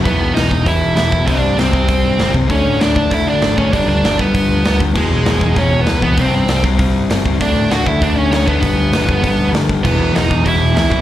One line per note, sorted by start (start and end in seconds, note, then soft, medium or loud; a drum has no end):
0.04 0.19 E1 medium
0.04 0.34 E2 medium
0.04 0.35 B2 medium
0.04 0.36 E3 loud
0.04 0.34 B3 medium
0.04 0.33 B4 loud
0.04 kick loud
0.04 open hi-hat medium
0.21 0.34 B1 medium
0.34 0.50 E1 medium
0.34 0.50 E2 medium
0.34 0.50 B2 medium
0.34 0.49 E3 medium
0.34 0.63 D#4 medium
0.34 0.67 D#5 loud
0.34 snare loud
0.34 open hi-hat medium
0.50 0.64 E1 medium
0.50 0.64 E2 medium
0.50 0.64 B2 medium
0.50 0.65 E3 medium
0.50 kick medium
0.65 0.80 E1 loud
0.65 0.94 E2 medium
0.65 0.95 B2 loud
0.65 0.95 E3 loud
0.65 0.94 E4 medium
0.65 0.96 E5 loud
0.65 kick loud
0.65 open hi-hat medium
0.83 0.96 E1 medium
0.95 1.25 E1 medium
0.95 1.11 E2 medium
0.95 1.11 B2 medium
0.95 1.10 E3 medium
0.95 1.25 E4 medium
0.95 1.29 E5 loud
0.95 snare loud
0.95 open hi-hat medium
1.12 1.27 E2 medium
1.12 1.25 B2 medium
1.12 1.26 E3 medium
1.12 kick medium
1.25 1.41 C2 medium
1.25 1.55 C3 medium
1.25 1.56 G3 loud
1.25 1.55 C4 loud
1.25 1.56 D4 medium
1.25 1.59 D5 loud
1.25 kick medium
1.25 open hi-hat medium
1.44 1.57 G2 medium
1.56 1.72 C2 medium
1.56 1.72 C3 medium
1.56 1.71 G3 medium
1.56 1.71 C4 loud
1.56 2.31 C4 medium
1.56 2.32 C5 loud
1.56 snare loud
1.56 open hi-hat medium
1.72 1.87 C2 medium
1.72 1.87 C3 medium
1.72 1.87 G3 medium
1.72 1.88 C4 medium
1.72 kick medium
1.89 2.03 C2 loud
1.89 2.17 C3 medium
1.89 2.17 G3 loud
1.89 2.18 C4 loud
1.89 kick medium
1.89 open hi-hat medium
2.03 2.17 G2 medium
2.19 2.33 G1 medium
2.19 2.34 C3 medium
2.19 2.34 G3 medium
2.19 2.33 C4 medium
2.19 snare loud
2.19 open hi-hat medium
2.34 2.48 C2 medium
2.34 2.48 C3 medium
2.34 2.49 G3 medium
2.34 2.49 C4 medium
2.34 kick medium
2.48 2.63 D2 medium
2.48 2.78 D3 medium
2.48 2.79 A3 loud
2.48 2.79 C#4 medium
2.48 2.80 D4 loud
2.48 kick loud
2.48 open hi-hat medium
2.53 2.82 C#5 loud
2.65 2.79 A2 medium
2.80 2.95 D2 medium
2.80 2.96 D3 medium
2.80 2.96 A3 medium
2.80 2.95 D4 medium
2.80 3.10 D4 medium
2.80 3.13 D5 loud
2.80 snare loud
2.80 open hi-hat medium
2.96 3.10 D2 medium
2.96 3.10 D3 medium
2.96 3.09 A3 medium
2.96 3.10 D4 loud
2.96 kick medium
3.10 3.25 D2 loud
3.10 3.40 D3 medium
3.10 3.41 A3 loud
3.10 3.42 D4 loud
3.10 3.27 E4 medium
3.10 3.28 E5 loud
3.10 kick loud
3.10 open hi-hat medium
3.27 3.40 D2 medium
3.27 3.56 D4 medium
3.27 3.58 D5 loud
3.41 3.69 G#1 medium
3.41 3.58 D3 medium
3.41 3.57 A3 medium
3.41 3.57 D4 loud
3.41 snare loud
3.41 open hi-hat medium
3.57 3.72 D3 medium
3.57 3.73 A3 medium
3.57 3.72 C#4 medium
3.57 3.72 D4 medium
3.57 3.74 C#5 medium
3.57 kick medium
3.72 3.87 G1 medium
3.72 4.03 G2 medium
3.72 4.03 D3 medium
3.72 4.03 G3 loud
3.72 3.86 D4 medium
3.72 3.88 D5 loud
3.72 kick loud
3.72 open hi-hat medium
3.87 4.02 D2 medium
3.87 4.16 D4 medium
3.87 4.20 D5 loud
4.04 4.17 G1 medium
4.04 4.19 G2 medium
4.04 4.19 D3 medium
4.04 4.18 G3 medium
4.04 snare loud
4.04 open hi-hat medium
4.19 4.33 G1 medium
4.19 4.32 G2 medium
4.19 4.33 D3 medium
4.19 4.34 G3 loud
4.19 4.77 B3 medium
4.19 4.77 B4 loud
4.19 kick medium
4.34 4.48 G1 loud
4.34 4.63 G2 medium
4.34 4.63 D3 loud
4.34 4.64 G3 loud
4.34 kick medium
4.34 open hi-hat medium
4.49 4.63 D2 medium
4.64 4.79 D2 medium
4.64 4.80 G2 medium
4.64 4.79 D3 medium
4.64 4.79 G3 medium
4.64 snare loud
4.64 open hi-hat medium
4.80 4.94 D2 medium
4.80 4.94 G2 medium
4.80 4.94 D3 medium
4.80 4.94 G3 medium
4.80 kick medium
4.94 5.09 E1 medium
4.94 5.23 E2 medium
4.94 5.24 B2 loud
4.94 5.26 E3 loud
4.94 5.53 G#3 medium
4.94 5.60 G#4 medium
4.94 kick loud
4.94 crash medium
5.12 5.25 B1 medium
5.24 5.39 E1 medium
5.24 5.39 E2 medium
5.24 5.39 B2 medium
5.24 5.39 E3 medium
5.24 snare loud
5.24 open hi-hat medium
5.40 5.55 E1 medium
5.40 5.54 E2 medium
5.40 5.55 B2 medium
5.40 5.55 E3 medium
5.40 kick medium
5.56 5.70 E1 loud
5.56 5.84 E2 medium
5.56 5.84 B2 loud
5.56 5.85 E3 loud
5.56 5.78 C#4 medium
5.56 5.81 C#5 medium
5.56 kick loud
5.56 open hi-hat medium
5.73 5.86 E1 medium
5.81 6.02 B3 medium
5.81 6.03 B4 medium
5.85 6.14 C#2 medium
5.85 6.01 E2 medium
5.85 6.00 B2 medium
5.85 5.99 E3 medium
5.85 snare loud
5.85 open hi-hat medium
6.01 6.17 E2 medium
6.01 6.16 B2 medium
6.01 6.16 E3 medium
6.01 6.17 B3 medium
6.01 6.21 B4 medium
6.01 kick medium
6.17 6.31 C2 medium
6.17 6.46 C3 loud
6.17 6.47 G3 medium
6.17 6.47 C4 loud
6.17 6.34 C4 medium
6.17 6.34 C5 medium
6.17 kick loud
6.17 open hi-hat medium
6.33 6.47 G2 medium
6.33 6.63 C4 medium
6.33 6.63 C5 medium
6.48 6.62 C2 medium
6.48 6.63 C3 medium
6.48 6.62 G3 medium
6.48 6.62 C4 medium
6.48 snare loud
6.48 open hi-hat medium
6.63 6.77 C2 medium
6.63 6.77 C3 medium
6.63 6.77 G3 medium
6.63 6.78 C4 loud
6.63 kick medium
6.78 6.93 C2 loud
6.78 7.08 C3 medium
6.78 7.09 G3 medium
6.78 7.09 C4 loud
6.78 kick loud
6.78 open hi-hat medium
6.94 7.07 G2 medium
7.09 7.23 G1 medium
7.09 7.24 C3 medium
7.09 7.24 G3 medium
7.09 7.23 C4 loud
7.09 snare loud
7.09 open hi-hat medium
7.25 7.39 C#2 medium
7.25 7.39 C3 medium
7.25 7.39 G3 medium
7.25 7.39 C4 medium
7.25 kick medium
7.39 7.54 D2 loud
7.39 7.68 D3 medium
7.39 7.69 A3 loud
7.39 7.71 D4 loud
7.39 7.69 D4 medium
7.39 7.72 D5 medium
7.39 kick medium
7.39 open hi-hat medium
7.55 7.68 A2 medium
7.70 7.84 D2 medium
7.70 7.85 D3 medium
7.70 7.84 A3 medium
7.70 7.84 D4 medium
7.70 7.85 F#4 medium
7.70 7.88 F#5 loud
7.70 snare loud
7.70 open hi-hat medium
7.85 8.00 D2 medium
7.85 7.99 D3 medium
7.85 8.00 A3 medium
7.85 8.00 D4 medium
7.85 8.00 E4 medium
7.85 8.04 E5 loud
7.85 kick loud
8.01 8.15 D2 loud
8.01 8.29 D3 medium
8.01 8.29 A3 loud
8.01 8.30 D4 loud
8.01 8.16 D4 medium
8.01 8.18 D5 loud
8.01 kick medium
8.01 open hi-hat medium
8.15 8.29 D2 medium
8.15 8.31 C#4 medium
8.15 8.33 C#5 medium
8.31 8.64 D2 loud
8.31 8.46 D3 medium
8.31 8.46 A3 medium
8.31 8.46 C#4 medium
8.31 8.45 D4 medium
8.31 8.47 C#5 medium
8.31 snare loud
8.31 open hi-hat medium
8.46 8.59 D3 medium
8.46 8.61 A3 medium
8.46 9.49 B3 medium
8.46 8.61 D4 loud
8.46 9.50 B4 medium
8.46 kick medium
8.60 8.76 G1 medium
8.60 8.91 G2 loud
8.60 8.91 D3 loud
8.60 8.92 G3 loud
8.60 kick medium
8.60 open hi-hat medium
8.77 8.91 D2 medium
8.92 9.06 G1 medium
8.92 9.06 G2 medium
8.92 9.05 D3 medium
8.92 9.05 G3 medium
8.92 snare loud
8.92 open hi-hat medium
9.06 9.22 G1 medium
9.06 9.21 G2 medium
9.06 9.22 D3 medium
9.06 9.22 G3 medium
9.06 kick medium
9.22 9.37 G1 medium
9.22 9.51 G2 medium
9.22 9.51 D3 loud
9.22 9.52 G3 loud
9.22 kick medium
9.22 open hi-hat medium
9.39 9.53 D2 medium
9.52 9.67 D2 medium
9.52 9.68 G2 medium
9.52 9.68 D3 medium
9.52 9.67 G3 medium
9.52 snare loud
9.52 open hi-hat medium
9.68 9.83 G1 medium
9.68 9.83 G2 medium
9.68 9.83 D3 medium
9.68 9.83 G3 medium
9.68 kick medium
9.83 9.98 E1 medium
9.83 10.12 E2 medium
9.83 10.12 B2 loud
9.83 10.13 E3 loud
9.83 10.12 B3 medium
9.83 10.17 B4 medium
9.83 kick medium
9.83 crash loud
9.99 10.13 B1 medium
10.13 10.28 E1 medium
10.13 10.28 E2 medium
10.13 10.28 B2 medium
10.13 10.27 E3 medium
10.13 10.43 D#4 medium
10.13 snare loud
10.13 open hi-hat medium
10.18 10.45 D#5 medium
10.28 10.44 E1 medium
10.28 10.42 E2 medium
10.28 10.42 B2 medium
10.28 10.43 E3 loud
10.28 kick medium
10.43 10.59 E1 medium
10.43 10.73 E2 medium
10.43 10.73 B2 loud
10.43 10.73 E3 loud
10.43 10.74 E4 medium
10.43 kick medium
10.43 open hi-hat medium
10.48 10.78 E5 medium
10.61 10.74 E1 medium
10.74 11.01 C#2 medium
10.74 10.90 E2 medium
10.74 10.89 B2 medium
10.74 10.89 E3 medium
10.74 11.01 E4 medium
10.74 snare loud
10.74 open hi-hat medium
10.79 11.01 E5 medium
10.90 11.01 E2 medium
10.90 11.01 B2 medium
10.90 11.01 E3 medium
10.90 kick medium